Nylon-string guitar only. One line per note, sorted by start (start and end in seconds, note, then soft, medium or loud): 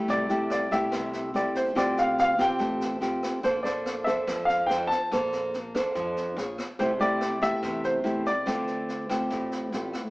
0.00 0.28 A3 medium
0.00 0.28 E4 medium
0.00 0.29 G4 medium
0.08 0.90 C3 medium
0.29 0.68 A3 medium
0.29 0.68 E4 medium
0.29 0.68 G4 medium
0.72 1.31 A3 medium
0.72 1.31 E4 medium
0.72 1.32 G4 medium
0.93 1.74 C3 medium
1.34 1.73 A3 medium
1.34 1.73 E4 medium
1.34 1.73 G4 medium
1.75 2.58 D3 medium
1.75 2.35 C4 medium
1.75 2.36 F4 medium
1.75 2.36 G4 medium
2.38 2.98 C4 medium
2.38 2.98 F4 medium
2.38 2.99 G4 medium
2.59 3.41 A3 medium
3.00 3.42 C4 medium
3.00 3.42 F4 medium
3.00 3.42 G4 medium
3.43 4.25 A#3 medium
3.43 3.56 D4 medium
3.43 3.56 A4 medium
3.43 3.57 C5 medium
3.64 4.03 D4 medium
3.64 4.03 A4 medium
3.64 4.03 C5 medium
4.06 4.66 D4 medium
4.06 4.66 A4 medium
4.06 4.67 C5 medium
4.28 5.09 F3 medium
4.69 4.96 D4 medium
4.69 4.97 A4 medium
4.69 4.97 C5 medium
5.12 5.94 A#3 medium
5.12 5.54 D4 medium
5.12 5.54 A4 medium
5.12 5.54 C5 medium
5.75 6.34 D4 medium
5.75 6.34 A4 medium
5.75 6.35 C5 medium
5.95 6.35 F3 medium
6.37 6.65 F4 soft
6.37 6.65 G#4 medium
6.37 6.66 C#5 medium
6.79 7.61 C3 medium
6.79 6.91 A3 medium
6.79 6.92 E4 medium
6.79 6.92 G4 medium
6.99 7.38 A3 medium
6.99 7.38 E4 medium
6.99 7.39 G4 medium
7.41 8.01 A3 medium
7.41 8.02 E4 medium
7.41 8.02 G4 medium
7.63 8.44 C3 medium
8.03 8.31 A3 medium
8.03 8.31 E4 medium
8.03 8.32 G4 medium
8.46 9.28 D3 medium
8.46 9.06 A3 medium
8.46 9.06 C4 medium
8.46 9.06 F4 medium
9.09 9.69 A3 medium
9.09 9.69 C4 medium
9.09 9.69 F4 medium
9.31 10.10 A2 medium
9.73 10.01 A3 medium
9.73 10.01 C4 medium
9.73 10.01 F4 medium